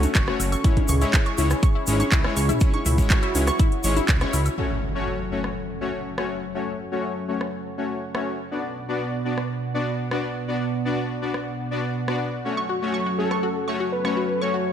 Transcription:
Already playing: C#4 F#4 A4
0.03 closed hi-hat, high conga, shaker
0.15 F#1 C#6, kick, clap, closed hi-hat, shaker
0.28 A3 C#4 F#4 C#5, cross-stick
0.40 F#1, open hi-hat, high woodblock, shaker
0.52 C#6, closed hi-hat, high woodblock, shaker
0.64 G#3 C#4 E4 G#4 C#5, kick, closed hi-hat, shaker
0.77 kick, closed hi-hat, high conga
0.88 C#2 C#6, mid tom, open hi-hat, shaker
1.01 G#3 C#4 E4 C#5, closed hi-hat, shaker
1.13 kick, clap, closed hi-hat, shaker
1.26 C#6, closed hi-hat
1.38 C#2 G#3 C#4 E4 C#5, open hi-hat, high conga, shaker
1.50 cross-stick, closed hi-hat, shaker
1.63 C#6, kick, closed hi-hat, shaker
1.75 E4
1.87 G#1 G#3 C#4 E4 C#5, open hi-hat, shaker
2.00 C#6, closed hi-hat, high conga, shaker
2.12 C#2 E4, kick, clap, closed hi-hat, shaker
2.24 G#3 C#4 E4 C#5, cross-stick, high woodblock
2.37 C#2 C#6, open hi-hat, shaker
2.49 E4, closed hi-hat, mid tom, high woodblock, shaker
2.60 G#3 C#4 E4 F#4 C#5, kick, closed hi-hat, shaker
2.74 C#6, closed hi-hat, high conga
2.86 C#2 E4, mid tom, open hi-hat, shaker
2.98 G#3 C#4 E4 C#5, kick, closed hi-hat, shaker
3.10 C#6, kick, clap, closed hi-hat, shaker
3.23 E4, closed hi-hat, high woodblock
3.35 C#2 G#3 C#4 E4 C#5, open hi-hat, high conga, shaker
3.47 C#6, cross-stick, closed hi-hat, shaker
3.59 E4, kick, closed hi-hat, shaker
3.72 closed hi-hat
3.84 G#1 G#3 C#4 E4 C#5 C#6, open hi-hat, shaker
3.97 E4, closed hi-hat, high conga, shaker
4.08 C#2, kick, clap, closed hi-hat, shaker
4.21 G#3 C#4 E4 C#5 C#6, cross-stick, closed hi-hat
4.33 C#2 E4, open hi-hat, high woodblock, shaker
4.46 closed hi-hat, high woodblock, shaker
4.58 F#3 A3 C#4 F#4 A4 C#5 F#5, impact
4.95 A3 C#4 F#4 C#5
5.32 A3 C#4 F#4 C#5
5.44 cross-stick
5.81 A3 C#4 F#4 C#5
6.18 A3 C#4 F#4 C#5, cross-stick
6.55 A3 C#4 F#4 C#5
6.92 A3 C#4 F#4 C#5
7.28 A3 C#4 F#4 C#5
7.41 cross-stick
7.78 A3 C#4 F#4 C#5
8.15 A3 C#4 F#4 C#5, cross-stick
8.51 B2 B3 D4 F#4 D5
8.88 B3 D4 F#4 D5
9.25 B3 D4 F#4 D5
9.38 cross-stick
9.74 B3 D4 F#4 D5
10.11 B3 D4 F#4 D5, cross-stick
10.48 B3 D4 F#4 D5
10.85 B3 D4 F#4 D5
11.22 B3 D4 F#4 D5
11.34 cross-stick
11.71 B3 D4 F#4 D5
12.08 B3 D4 F#4 D5, cross-stick
12.45 F#3 A3 C#4 F#4 A4 C#5
12.57 C#6
12.69 F#4
12.82 A3 C#4 F#4 C#5
12.94 C#6
13.06 F#4
13.18 A3 C#4 F#4 A4 C#5
13.31 C#6, cross-stick
13.43 F#4
13.68 A3 C#4 F#4 C#5 C#6
13.80 F#4
13.92 B4
14.05 A3 C#4 F#4 C#5 C#6, cross-stick
14.17 F#4
14.41 A3 C#4 F#4 C#5 E5 C#6
14.54 F#4

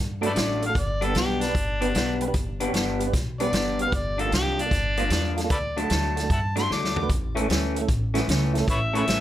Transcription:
Already playing: G2
0.21 D3 F#3 A3 D4 F#4 A4, closed hi-hat
0.26 A4 B4 D5
0.34 A1 D3 F#3 A3 D4, snare, closed hi-hat
0.62 F#4 A4, closed hi-hat
0.66 A3 D4 F#4 A4 F5
0.75 G1, kick, closed hi-hat
0.79 D5
1.01 G2 G3 B3 D4 G4 A4 B4, closed hi-hat
1.08 B3 D4 G4 B4
1.14 B1 G2 G3 B3 D4 G4, snare, closed hi-hat
1.41 D4 G4 B4, snare, closed hi-hat
1.48 B3 D4 G4 B4
1.55 G1, kick, closed hi-hat
1.81 G2 G3 B3 D4 G4 B4, closed hi-hat
1.94 B1 G2 G3 B3 D4, snare, closed hi-hat
2.21 G4 B4, closed hi-hat
2.28 B3 D4 G4 B4
2.34 G1, kick, closed hi-hat
2.60 G2 G3 B3 D4 G4 B4, closed hi-hat
2.68 B3 D4 G4 C#5
2.73 G1 G2 G3 B3 D4, snare, closed hi-hat
2.99 G4 B4, closed hi-hat
3.07 B3 D4 G4 B4
3.13 B1, kick, snare, closed hi-hat
3.40 G2 G3 B3 D4 G4 B4 D5, closed hi-hat
3.53 G1 G2 G3 B3 D4, snare, closed hi-hat
3.79 G4 C#5 F5, closed hi-hat
3.87 B3 D4 G4 B4
3.92 G1 D5, kick, closed hi-hat
4.18 G2 F3 A#3 D4 F4 A4, closed hi-hat
4.26 A#3 D4 F4 G4
4.31 C2 G2 F3 A#3 D4 G4, snare, closed hi-hat
4.58 D4 F4 G4, closed hi-hat
4.66 A#3 D4 F4 A4
4.71 G1, kick, snare, closed hi-hat
4.97 G2 F3 A#3 D4 F4 C5, closed hi-hat
5.10 E2 G2 F3 A#3 D4, snare, closed hi-hat
5.37 F4 A4, snare, closed hi-hat
5.44 A#3 D4 F4 A4
5.50 D2 A4 B4 D5, kick, closed hi-hat
5.76 D3 F#3 A3 D4 F#4 A4 A5, closed hi-hat
5.83 A3 D4 F#4 A4
5.90 D2 D3 F#3 A3 D4, snare, closed hi-hat
6.16 F#4 A4, snare, closed hi-hat
6.23 A3 D4 F#4 A4
6.30 G2 E5 F#5 A5, kick, closed hi-hat
6.56 D3 F#3 A3 D4 F#4 A4 C6, snare, closed hi-hat
6.70 D2 D3 F#3 A3 D4 D6, snare
6.85 snare
6.96 F#4 A4, floor tom
7.02 A3 D4 F#4 B4
7.09 A1, kick, closed hi-hat
7.35 A2 E3 A3 C#4 E4 A4, closed hi-hat
7.41 A3 C#4 E4 A4
7.49 D2 A2 E3 A3 C#4, snare, closed hi-hat
7.75 E4 A4, closed hi-hat
7.81 A3 C#4 E4 A4
7.88 A1, kick, closed hi-hat
8.14 A2 E3 A3 C#4 E4 F#4, snare, closed hi-hat
8.28 C#2 A2 E3 A3 C#4, snare, closed hi-hat
8.54 E4 A4, snare, closed hi-hat
8.60 A3 C#4 E4 A4
8.67 A1 B4 C#5 E5, kick, closed hi-hat
8.93 A2 E3 A3 C#4 E4 A4 B4 C#5 E5, closed hi-hat
8.98 A3 C#4 E4 A4
9.07 A1 A2 E3 A3 C#4, snare, closed hi-hat

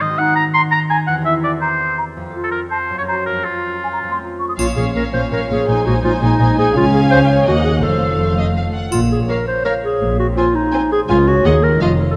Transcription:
Already playing: G#2 D#4 G#4
0.01 D#3 D#5
0.05 C4
0.10 F#4
0.14 D#4 A#4 F#5
0.36 A#5
0.54 A#5 C6
0.72 A#5
0.90 G#5 A#5
1.07 E2 F#5
1.12 C4
1.17 G4
1.21 A#4 E5
1.26 E4
1.44 D5
1.61 C5 A#5
1.98 A#5
2.17 F2
2.21 C4
2.26 F4
2.30 A4
2.35 F4
2.44 A4
2.52 A#4
2.70 C5 A5
2.90 F#2
2.95 A#3 C#5
2.99 C#4
3.04 A#4 C5
3.08 F#4 A#5
3.26 F2 A#4
3.32 A#3
3.36 C#4
3.41 F4 A#4
3.46 F4
3.84 G#5
3.93 A#5
4.03 F2
4.08 A3 C6
4.12 C4
4.17 C5
4.22 F4
4.39 C#6
4.49 D#6
4.57 A#1 A#2 C#4 F4 C#5 F5, triangle
4.76 A#1 A#2 F3 C#4 G#4 C#5 F5
4.95 A#1 A#2 C#4 A#4 C#5 F5
5.13 A#1 A#2 C#4 F4 C5 C#5 F5
5.31 A#1 A#2 C#4 A#4 C#5 F5
5.49 A#1 A#2 C#4 F4 G#4 C#5 F5
5.67 A#1 A#2 D#4 C5 G#5
5.85 A#1 A#2 G#3 D#4 F#4 C5 G#5
6.03 A#1 A#2 D#4 F4 C5 G#5
6.21 A#1 A#2 D#4 G#4 C5 G#5
6.39 A#1 A#2 D#4 C5 D#5 G#5
6.57 A#1 A#2 D#4 G#4 C5 G#5
6.75 C#2 C#3 C#4 F4 F5 G#5
6.93 C#4 G#4
7.11 G#4 C5
7.29 C#5
7.46 D#2 D#3 A#3 F#4 D#5 F#5
7.64 F#4 G#4 A#4
7.81 F1 F2 F3 A3 A4 C5 F5
8.02 F4
8.20 C5
8.38 D#5 F5
8.56 F5 A5
8.74 F5 F#5
8.92 A#1 A#2 F4, triangle
9.11 C#4 G#4
9.28 A#3 A#4 C#5 F5
9.47 C5 C#5
9.64 A#3 A#4 C#5 F5
9.83 G#4 C#5
10.01 A#1 A#2
10.19 C4 F#4
10.36 C4 F4 C5 G#5
10.55 D#4 G#4
10.72 C4 C5 G#5
10.91 G#4 C5
11.08 C#2 C#3 C#4 F4 F5 G#5
11.27 F#4 G#4 C#5
11.45 D#2 D#3 A#3 G#4 D#5 F#5
11.63 F#4 A#4
11.81 F1 F2 F3 A3 F4 D#5 F5
12.00 F4 A4
12.11 A4

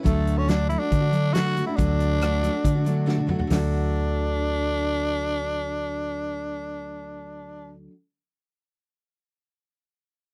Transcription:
0.03 D2 D3 F#3 A3 D4 F#4, kick, closed hi-hat
0.27 closed hi-hat
0.38 C#4
0.48 D3 F#3 A3 D4 F#4, snare, closed hi-hat
0.69 F#3 A3 D4 E4 F#4, closed hi-hat
0.79 A3 D4 F#4
0.92 D3, kick, closed hi-hat
1.00 A3 D4 F#4
1.11 F#3 A3 D4 F#4, closed hi-hat
1.33 D3 F#3 A3 D4 F#4, snare, closed hi-hat
1.56 F#3 A3 D4 F#4, closed hi-hat
1.66 A3 D4 E4 F#4
1.77 D2 D3 F#3 A3 D4 F#4, kick, closed hi-hat
2.00 closed hi-hat
2.21 D3 F#3 A3 D4 F#4, cross-stick, closed hi-hat
2.43 F#3 A3 D4 F#4, closed hi-hat
2.53 A3 D4 F#4
2.65 D3, kick, closed hi-hat
2.75 A3 D4 F#4
2.85 F#3 A3 D4 F#4, closed hi-hat
3.06 D3 F#3 A3 D4 F#4, snare
3.17 A3 D4 F#4, high tom
3.27 F#3 A3 D4 F#4, mid tom
3.38 A3 D4 F#4, floor tom
3.47 D2 D3 F#3 D4, floor tom, open hi-hat
3.51 A3 D4 F#4, snare

